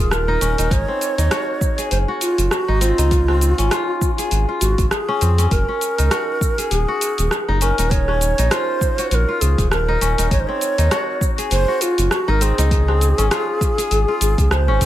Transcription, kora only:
Already playing: C#4 D#4 F4
0.28 D#4
0.41 C#4
0.58 D#4
0.88 C4
1.18 D#4
1.31 F#4
1.78 G#4
2.08 F#4
2.68 D#4
2.81 C4
2.98 D#4
3.28 C4
3.58 C#4
3.71 F4
4.18 G#4
4.49 F4
5.08 C#4
5.21 C4
5.38 C#4
5.68 C#4
5.98 D#4
6.11 F#4
6.58 G#4
6.88 F#4
7.48 D#4
7.62 C#4
7.79 D#4
8.09 C#4
8.39 D#4
8.51 F4
8.99 F#4
9.29 F4
9.88 D#4
10.01 C#4
10.18 D#4
10.49 C4
10.78 D#4
10.91 F#4
11.38 G#4
11.68 F#4
12.28 D#4
12.41 C4
12.58 D#4
12.88 C4
13.18 C#4
13.31 F4
13.78 G#4
14.08 F4
14.68 C#4
14.81 C4

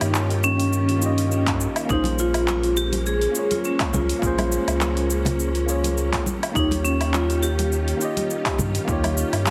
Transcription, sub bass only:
0.01 G2
1.89 A#1
3.93 C#2
4.22 A#1
4.67 C#2
6.55 D#2
8.59 G2
8.88 D#2
9.32 G2

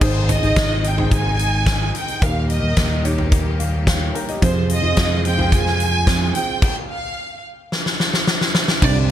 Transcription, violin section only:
0.03 C5
0.30 D#5
0.87 G5
1.14 G#5
1.98 G5
2.24 F5
2.50 D#5
4.44 C5
4.72 D#5
5.26 G5
5.54 G#5
6.35 G5
6.63 G5
6.90 F5
8.83 D5

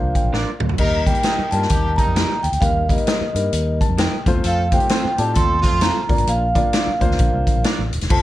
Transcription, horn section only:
0.78 D#4 G4 A#4
1.06 A#3 D#4 G4
1.23 G3 A#3 D#4
1.51 A#3 D4 F4
1.69 A#3 D#4 G4
1.97 G3 A#3 D#4
4.43 C4 F4 A4
4.71 C4 D#4 G4
4.88 A3 C4 F4
5.16 C4 D#4 G4
5.34 C4 F4 A4
5.61 A3 C4 F4

